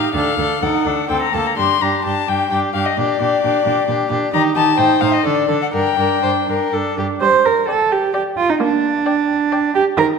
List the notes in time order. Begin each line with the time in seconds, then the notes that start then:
Already playing: D#4 G4 F5
0.14 D2 D4 A4 F5
0.38 D2 D4 A4
0.62 D2 D#4 A4 F#5
0.86 D2 D4 A4
1.09 D2 C4 A4 G5
1.22 A#5
1.34 D2 A#3 A4 A5
1.47 A#5
1.58 G2 D4 G4 C6
1.82 G2 D4 G4 A#5
2.05 G2 D4 G4 A5
2.28 G2 D4 G4 G5
2.51 G2 D4 G4 G5
2.74 G2 D4 G4 F5
2.86 D#5
2.97 A#2 D4 G4 D5
3.21 A#2 D4 G4
3.43 A#2 D4 G4
3.65 A#2 D4 G4
3.88 A#2 D4 G4
4.10 A#2 D4 G4
4.33 D#3 D#4 G4 A#5
4.55 D#3 D#4 G4 A5
4.77 A2 D#4 C5 G5
5.01 A2 D#4 C5 F5
5.14 D#5
5.25 D3 D4 A4 D5
5.49 D3 D4 A4
5.62 F#5
5.73 G2 D4 A#4 G5
5.98 G2 D4 A#4
6.23 G2 D4 C5
6.48 G2 D4 A#4
6.72 G2 D4 A4
6.97 G2 D4 G4
7.21 G3 C5
7.45 A#4
7.68 A4 D5 G5
7.92 G4
8.14 G4 D5 G5
8.37 F4
8.49 D#4
8.60 A#3 D4
9.06 D5 G5
9.52 D5 G5
9.75 G4
9.97 D#3 A#4